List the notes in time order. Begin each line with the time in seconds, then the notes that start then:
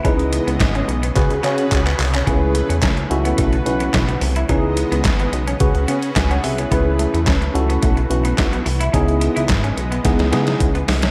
Already playing: C#3
0.04 C#2 E3 G#3 B3 C#4 D#4 E4 G#4 B4 D#5, kick, closed hi-hat
0.19 closed hi-hat
0.33 muted clean electric guitar stroke, closed hi-hat
0.47 C#2 B3, closed hi-hat
0.60 G#1, kick, snare, clap, closed hi-hat
0.75 C#4, closed hi-hat
0.88 B1, muted clean electric guitar stroke, closed hi-hat
1.03 B3, closed hi-hat
1.16 C#2 C#4 F#4 G#4 B4, kick, clap, closed hi-hat
1.30 C#2, closed hi-hat
1.43 C#3 C#4 F#4 G#4 C#5, clap, closed hi-hat
1.58 closed hi-hat
1.72 C#2, kick, clap, closed hi-hat
1.86 B3, clap, closed hi-hat
1.99 C2, muted clean electric guitar stroke, clap, open hi-hat
2.14 C#4, clap, closed hi-hat
2.27 C#2 E3 A3 B3 C#4 E4 G#4 B4, kick, closed hi-hat
2.55 A3, closed hi-hat
2.69 E2, muted clean electric guitar stroke, closed hi-hat
2.82 C#2 C#4, kick, snare, clap, closed hi-hat
2.97 muted clean electric guitar stroke, closed hi-hat
3.10 C#2 C#4 E4 F#4 A4 B4, closed hi-hat
3.25 B3, closed hi-hat
3.38 B1 A3, kick, closed hi-hat
3.53 muted clean electric guitar stroke, closed hi-hat
3.66 B1 C#4 E4 F#4 B4, closed hi-hat
3.80 B3, closed hi-hat
3.94 B1, kick, snare, clap, closed hi-hat
4.09 B3, closed hi-hat
4.21 C2, muted clean electric guitar stroke, open hi-hat
4.36 E4, closed hi-hat
4.49 C#2 G#3 B3 C#4 D#4 E4 G#4 B4 D#5, kick, closed hi-hat
4.77 muted clean electric guitar stroke, closed hi-hat
4.92 C#2 B3, closed hi-hat
5.05 G#1, kick, snare, clap, closed hi-hat
5.20 B3, closed hi-hat
5.33 B1, muted clean electric guitar stroke, closed hi-hat
5.48 C#4, closed hi-hat
5.60 C#2 C#4 F#4 G#4 B4, kick, closed hi-hat
5.75 C#2, closed hi-hat
5.88 C#3 B3, closed hi-hat
6.02 closed hi-hat
6.16 C#2 B4 G#5, kick, snare, clap, closed hi-hat
6.31 C#4 F#5, closed hi-hat
6.44 C2 G#4 E5, muted clean electric guitar stroke, open hi-hat
6.58 B3 E4 C#5, closed hi-hat
6.71 C#2 E3 A3 B3 C#4 E4 G#4 B4, kick, closed hi-hat
6.99 A3, closed hi-hat
7.14 E2, muted clean electric guitar stroke, closed hi-hat
7.27 C#2 C#4, kick, snare, clap, closed hi-hat
7.41 muted clean electric guitar stroke, closed hi-hat
7.54 C#2 C#4 E4 F#4 A4, closed hi-hat
7.69 B3, closed hi-hat
7.82 B1 A3, kick, closed hi-hat
7.97 muted clean electric guitar stroke, closed hi-hat
8.10 B1 C#4 E4 F#4 B4, closed hi-hat
8.25 B3, closed hi-hat
8.38 B1, kick, snare, clap, closed hi-hat
8.53 B3, closed hi-hat
8.66 C2, muted clean electric guitar stroke, open hi-hat
8.80 E4, closed hi-hat
8.93 C#2 G#3 B3 C#4 D#4 E4 G#4 D#5, kick, closed hi-hat
9.08 closed hi-hat
9.21 muted clean electric guitar stroke, closed hi-hat
9.36 C#2 E4, closed hi-hat
9.49 G#1, kick, snare, clap, closed hi-hat
9.64 C#4, closed hi-hat
9.77 B1, muted clean electric guitar stroke, closed hi-hat
9.92 B3, closed hi-hat
10.04 C#2 C#3 B3 D#4 E4 G#4, kick, snare, closed hi-hat
10.19 C#2, snare, closed hi-hat
10.32 C#3 G#3 B3 D#4 E4 G#4, snare, closed hi-hat
10.47 snare, closed hi-hat
10.60 C#2, kick, closed hi-hat
10.75 B3, closed hi-hat
10.88 C2, muted clean electric guitar stroke, snare, open hi-hat
11.02 C#4, snare, closed hi-hat